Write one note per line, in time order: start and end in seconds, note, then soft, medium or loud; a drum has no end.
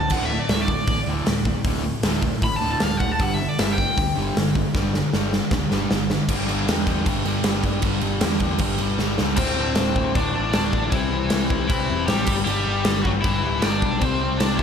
0.00 0.12 A5 medium
0.10 0.37 D1 loud
0.10 0.30 D2 medium
0.10 0.31 A2 medium
0.10 0.24 F#5 loud
0.10 kick loud
0.10 crash loud
0.15 0.31 D3 loud
0.25 0.40 E5 medium
0.32 0.49 D2 medium
0.32 0.49 A2 medium
0.40 0.50 D5 loud
0.49 0.75 D1 medium
0.49 0.68 D2 medium
0.49 0.68 A2 medium
0.49 0.69 D3 loud
0.49 0.62 E5 medium
0.49 snare loud
0.49 open hi-hat medium
0.62 1.00 D5 medium
0.68 0.87 D2 medium
0.68 0.87 A2 medium
0.68 kick loud
0.87 1.01 A1 loud
0.87 1.06 D2 medium
0.87 1.06 A2 medium
0.87 kick loud
0.87 open hi-hat medium
1.07 1.21 D1 medium
1.07 1.25 D2 medium
1.07 1.26 A2 medium
1.07 1.27 D3 medium
1.26 1.53 D1 medium
1.26 1.44 D2 medium
1.26 1.45 A2 medium
1.26 snare loud
1.26 open hi-hat medium
1.45 1.64 D2 medium
1.45 1.64 A2 medium
1.45 kick medium
1.64 1.91 D1 medium
1.64 1.82 D2 medium
1.64 1.83 A2 medium
1.64 1.84 D3 loud
1.64 kick loud
1.64 open hi-hat medium
1.83 2.02 D2 medium
1.83 2.02 A2 medium
2.03 2.30 D1 medium
2.03 2.21 D2 medium
2.03 2.22 A2 medium
2.03 2.22 D3 medium
2.03 snare loud
2.03 open hi-hat medium
2.22 2.40 D2 medium
2.22 2.41 A2 medium
2.22 kick medium
2.42 2.55 A1 loud
2.42 2.60 D2 medium
2.42 2.60 A2 medium
2.42 2.56 B5 loud
2.42 kick loud
2.42 open hi-hat medium
2.57 2.69 A5 loud
2.61 2.75 D1 medium
2.61 2.80 D2 medium
2.61 2.81 A2 loud
2.61 2.81 D3 loud
2.71 2.82 A5 loud
2.80 3.20 D1 loud
2.80 2.99 D2 medium
2.80 2.99 A2 medium
2.80 2.97 F5 loud
2.80 snare loud
2.80 open hi-hat medium
2.97 3.18 D2 medium
2.97 3.12 F#5 loud
2.97 kick medium
3.01 3.19 A2 medium
3.12 3.22 A5 medium
3.19 3.46 G1 loud
3.19 3.38 G2 medium
3.19 3.39 D3 loud
3.19 3.39 G3 loud
3.19 3.34 F#5 loud
3.19 kick loud
3.19 open hi-hat medium
3.34 3.49 E5 loud
3.42 3.57 G2 medium
3.42 3.58 D3 medium
3.49 3.60 D5 medium
3.59 3.85 G1 medium
3.59 3.77 G2 medium
3.59 3.78 D3 loud
3.59 3.78 G3 loud
3.59 3.72 E5 loud
3.59 snare loud
3.59 open hi-hat medium
3.73 4.10 G5 loud
3.78 3.96 G2 medium
3.78 3.96 D3 medium
3.78 kick medium
3.98 4.11 D2 medium
3.98 4.16 G2 medium
3.98 4.16 D3 medium
3.98 kick loud
3.98 open hi-hat medium
4.17 4.30 G1 loud
4.17 4.35 G2 medium
4.17 4.36 D3 loud
4.17 4.36 G3 loud
4.37 4.62 G1 medium
4.37 4.54 G2 medium
4.37 4.54 D3 medium
4.37 snare loud
4.37 open hi-hat medium
4.55 4.73 G2 medium
4.55 4.74 D3 medium
4.55 kick medium
4.75 5.01 G1 loud
4.75 4.93 G2 medium
4.75 4.93 D3 loud
4.75 4.93 G3 loud
4.75 kick loud
4.75 snare medium
4.94 5.12 G2 medium
4.94 5.12 D3 medium
4.94 snare medium
5.13 5.39 G1 medium
5.13 5.31 G2 loud
5.13 5.32 D3 loud
5.13 5.32 G3 loud
5.13 snare medium
5.32 5.50 G2 medium
5.32 5.50 D3 medium
5.32 snare medium
5.51 5.65 D2 loud
5.51 5.69 G2 medium
5.51 5.70 D3 medium
5.51 kick loud
5.51 snare medium
5.70 5.85 G1 loud
5.70 5.89 G2 medium
5.70 5.89 D3 medium
5.70 5.89 G3 loud
5.70 snare medium
5.91 6.17 G1 medium
5.91 6.08 G2 medium
5.91 6.09 D3 medium
5.91 snare loud
6.10 6.27 G2 medium
6.10 6.27 D3 medium
6.10 snare loud
6.29 6.47 G1 medium
6.29 6.47 G2 loud
6.29 6.47 D3 loud
6.29 6.49 G3 loud
6.29 kick loud
6.29 crash loud
6.29 crash medium
6.48 6.67 G1 medium
6.48 6.67 G2 medium
6.48 6.66 D3 medium
6.48 6.68 G3 medium
6.48 crash medium
6.67 7.06 E2 medium
6.67 6.85 G2 medium
6.67 6.85 D3 medium
6.67 6.86 G3 loud
6.67 snare loud
6.67 crash medium
6.86 7.04 G2 medium
6.86 7.05 D3 loud
6.86 7.06 G3 loud
6.86 kick loud
6.86 crash medium
7.06 7.25 G1 loud
7.06 7.25 G2 medium
7.06 7.25 D3 medium
7.06 7.26 G3 medium
7.06 kick loud
7.06 crash medium
7.25 7.45 G1 medium
7.25 7.43 G2 loud
7.25 7.44 D3 medium
7.25 7.45 G3 loud
7.25 crash medium
7.44 7.63 G1 medium
7.44 7.63 G2 medium
7.44 7.64 D3 medium
7.44 7.64 G3 medium
7.44 snare loud
7.44 crash medium
7.63 7.82 G1 medium
7.63 7.81 G2 medium
7.63 7.82 D3 medium
7.63 7.82 G3 medium
7.63 kick medium
7.63 crash medium
7.82 8.02 G1 medium
7.82 8.03 G2 loud
7.82 8.03 D3 loud
7.82 8.04 G3 loud
7.82 kick loud
7.82 crash medium
8.01 8.21 G1 medium
8.01 8.22 G2 medium
8.01 8.22 D3 medium
8.01 8.23 G3 loud
8.01 crash medium
8.21 8.59 E2 medium
8.21 8.40 G2 medium
8.21 8.41 D3 medium
8.21 8.42 G3 loud
8.21 snare loud
8.21 crash loud
8.40 8.59 G2 loud
8.40 8.59 D3 loud
8.40 8.61 G3 loud
8.40 kick medium
8.40 crash medium
8.58 8.79 G1 loud
8.58 8.78 G2 loud
8.58 8.79 D3 loud
8.58 8.80 G3 loud
8.58 kick loud
8.58 crash loud
8.78 8.99 G1 loud
8.78 8.97 G2 medium
8.78 8.98 D3 loud
8.78 8.99 G3 loud
8.78 crash medium
8.99 9.18 G1 medium
8.99 9.17 G2 medium
8.99 9.18 D3 medium
8.99 9.18 G3 medium
8.99 snare medium
9.18 9.37 C#2 medium
9.18 9.37 G2 medium
9.18 9.37 D3 medium
9.18 9.37 G3 medium
9.18 snare medium
9.36 9.56 D1 loud
9.36 9.57 D2 loud
9.36 9.58 A2 loud
9.36 10.17 C4 loud
9.36 10.12 C5 medium
9.36 kick loud
9.36 crash loud
9.36 crash medium
9.41 9.58 D3 loud
9.58 9.76 D1 medium
9.58 9.75 D2 medium
9.58 9.77 A2 medium
9.58 9.77 D3 loud
9.75 9.95 D1 medium
9.75 9.95 D2 loud
9.75 9.96 A2 medium
9.75 9.97 D3 loud
9.75 snare loud
9.75 crash medium
9.96 10.14 D1 medium
9.96 10.15 D2 medium
9.96 10.15 A2 medium
9.96 10.15 D3 medium
9.96 kick medium
10.15 10.33 D1 loud
10.15 10.34 D2 loud
10.15 10.35 A2 loud
10.15 10.36 D3 loud
10.15 10.51 D4 medium
10.15 10.52 D5 medium
10.15 kick loud
10.15 crash medium
10.35 10.53 A1 loud
10.35 10.53 D2 medium
10.35 10.54 A2 medium
10.35 10.54 D3 medium
10.52 10.72 D2 medium
10.52 10.72 A2 medium
10.52 10.73 D3 medium
10.52 10.90 D4 medium
10.52 10.90 D5 medium
10.52 snare loud
10.52 crash medium
10.56 10.72 D1 medium
10.73 10.91 A1 medium
10.73 10.91 D2 medium
10.73 10.92 A2 medium
10.73 10.92 D3 loud
10.73 kick medium
10.90 11.28 C2 loud
10.90 11.10 C3 loud
10.90 11.66 E3 medium
10.90 11.11 G3 loud
10.90 11.12 C4 loud
10.90 11.67 E4 loud
10.90 kick loud
10.90 crash medium
11.11 11.30 C3 medium
11.11 11.32 G3 medium
11.11 11.31 C4 medium
11.30 11.50 C2 medium
11.30 11.50 C3 medium
11.30 11.52 G3 medium
11.30 11.51 C4 loud
11.30 snare loud
11.30 crash medium
11.50 11.69 C2 loud
11.50 11.70 C3 medium
11.50 11.71 G3 medium
11.50 11.71 C4 medium
11.50 kick loud
11.68 11.88 C2 loud
11.68 11.88 C3 loud
11.68 12.06 E3 medium
11.68 11.90 G3 loud
11.68 12.06 E4 loud
11.68 kick loud
11.68 crash medium
11.72 11.89 C4 loud
11.89 12.08 E1 loud
11.89 12.08 C3 medium
11.89 12.09 G3 medium
11.89 12.09 C4 loud
12.06 12.26 A1 medium
12.06 12.27 C3 medium
12.06 12.29 G3 loud
12.06 12.36 G3 medium
12.06 12.27 C4 loud
12.06 12.34 G4 loud
12.06 snare loud
12.06 crash medium
12.27 12.46 G1 medium
12.27 12.46 G2 loud
12.27 12.47 D3 loud
12.27 12.49 G3 loud
12.27 kick loud
12.27 crash loud
12.45 12.65 G1 loud
12.45 12.66 G2 loud
12.45 12.67 D3 loud
12.45 13.01 G3 medium
12.45 13.02 G4 loud
12.45 crash medium
12.49 12.68 G3 loud
12.66 12.84 G1 medium
12.66 12.85 G2 loud
12.66 12.85 D3 loud
12.66 12.87 G3 loud
12.84 13.04 G1 medium
12.84 13.04 G2 medium
12.84 13.05 D3 medium
12.84 13.06 G3 loud
12.84 snare loud
12.84 crash medium
13.03 13.23 G1 loud
13.03 13.23 G2 medium
13.03 13.24 D3 medium
13.03 13.11 F#3 medium
13.03 13.24 G3 loud
13.03 13.08 F#4 loud
13.03 kick loud
13.22 13.42 G1 loud
13.22 13.42 G2 loud
13.22 13.43 D3 loud
13.22 13.61 E3 medium
13.22 13.43 G3 loud
13.22 13.63 E4 loud
13.22 kick loud
13.22 crash medium
13.43 13.62 D1 loud
13.43 13.61 G2 loud
13.43 13.62 D3 medium
13.43 13.62 G3 loud
13.59 13.81 G2 medium
13.59 13.82 D3 medium
13.59 13.82 G3 medium
13.59 14.01 D4 medium
13.59 13.99 D5 medium
13.59 snare loud
13.59 crash medium
13.64 13.81 G1 medium
13.82 14.00 B1 medium
13.82 14.01 G2 medium
13.82 14.01 D3 medium
13.82 14.01 G3 loud
13.82 kick medium
14.00 14.38 C2 loud
14.00 14.20 C3 loud
14.00 14.22 G3 loud
14.00 14.40 C4 loud
14.00 14.22 C4 loud
14.00 14.38 C5 medium
14.00 kick loud
14.00 crash medium
14.21 14.40 C3 medium
14.21 14.41 G3 medium
14.21 14.41 C4 loud
14.37 14.58 C2 medium
14.37 14.60 C3 medium
14.37 14.56 D4 loud
14.37 14.59 D5 medium
14.37 snare loud
14.37 crash medium
14.42 14.61 G3 medium
14.42 14.61 C4 loud
14.56 14.63 C2 loud
14.56 14.63 E4 loud
14.56 kick medium